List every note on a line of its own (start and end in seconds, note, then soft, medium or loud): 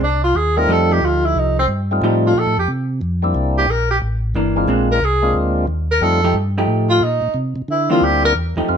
0.01 0.34 C2 medium
0.01 0.22 D4 medium
0.24 0.38 F4 medium
0.35 0.68 D#2 medium
0.35 0.58 G#4 medium
0.57 1.00 G3 medium
0.57 1.00 A3 medium
0.57 1.00 C4 medium
0.57 1.01 D#4 medium
0.57 1.01 F4 medium
0.57 0.73 A#4 loud
0.68 1.01 F2 medium
0.68 1.61 F3 medium
0.68 1.62 A3 medium
0.68 1.62 D#4 medium
0.68 1.62 G4 medium
0.68 0.94 A4 medium
0.92 1.07 G4 medium
1.02 1.34 D2 medium
1.02 1.27 F4 medium
1.25 1.40 E4 medium
1.35 1.67 C2 medium
1.35 1.58 D#4 medium
1.59 1.66 C4 medium
1.68 2.01 G2 medium
1.91 2.34 G3 medium
1.91 2.34 A3 medium
1.91 2.34 C4 medium
1.91 2.34 D#4 medium
1.91 2.34 F4 medium
2.02 2.34 A2 medium
2.02 2.53 F3 medium
2.02 2.53 A3 medium
2.02 2.53 D#4 medium
2.02 2.53 G4 medium
2.27 2.40 F4 medium
2.35 2.46 A#2 medium
2.39 2.58 A4 loud
2.46 2.57 A2 medium
2.57 2.68 F2 medium
2.57 2.69 G4 medium
2.68 3.01 C3 medium
3.01 3.34 F2 medium
3.22 3.66 G3 medium
3.22 3.66 A#3 medium
3.22 3.66 C4 medium
3.22 3.67 D4 medium
3.22 3.67 E4 medium
3.35 3.67 C2 medium
3.58 3.72 G4 loud
3.68 4.01 A#1 medium
3.68 3.90 A#4 medium
3.91 3.98 G4 medium
4.02 4.34 A1 medium
4.35 4.67 G1 medium
4.35 4.68 E3 medium
4.35 4.68 A#3 medium
4.35 4.68 D4 medium
4.56 4.99 G#3 medium
4.56 5.00 A#3 medium
4.56 5.00 C4 medium
4.56 5.00 D4 medium
4.56 5.00 F4 medium
4.68 5.00 A#1 medium
4.68 4.87 G#3 medium
4.68 4.88 C4 medium
4.68 4.88 D4 medium
4.92 5.06 A#4 loud
5.01 5.34 C2 medium
5.01 5.36 G#4 medium
5.22 5.66 G#3 medium
5.22 5.66 A#3 medium
5.22 5.66 C4 medium
5.22 5.66 D4 medium
5.22 5.67 F4 medium
5.34 5.67 D2 medium
5.67 6.00 D#2 medium
5.91 6.04 A#4 loud
6.01 6.34 F2 medium
6.01 6.21 G3 medium
6.01 6.21 A3 medium
6.01 6.22 C4 medium
6.01 6.21 D#4 medium
6.01 6.22 F4 medium
6.01 6.36 A4 medium
6.24 6.35 F3 medium
6.24 6.35 A3 medium
6.24 6.35 D#4 medium
6.24 6.35 G4 medium
6.34 6.67 G2 medium
6.58 7.00 F3 medium
6.58 7.00 A3 medium
6.58 7.00 D#4 medium
6.58 7.01 G4 medium
6.67 7.00 A2 medium
6.90 7.05 F4 loud
7.00 7.21 A#2 medium
7.00 7.36 D#4 medium
7.22 7.28 A#2 soft
7.34 7.54 C3 medium
7.56 7.62 C3 soft
7.68 8.01 D3 medium
7.68 7.90 E4 medium
7.90 8.01 E3 medium
7.90 8.33 G3 medium
7.90 8.01 A#3 medium
7.90 8.34 A#3 medium
7.90 8.34 C4 medium
7.90 8.01 D4 medium
7.90 8.34 D4 medium
7.90 8.34 E4 medium
7.90 8.06 F4 medium
8.01 8.34 D2 medium
8.01 8.24 G4 medium
8.25 8.32 A#4 loud
8.35 8.55 E2 medium
8.56 8.62 E2 soft
8.56 8.77 F3 medium
8.56 8.77 A3 medium
8.56 8.77 D#4 medium
8.56 8.77 G4 medium
8.69 8.77 F2 medium
8.69 8.77 C4 medium
8.69 8.77 F4 loud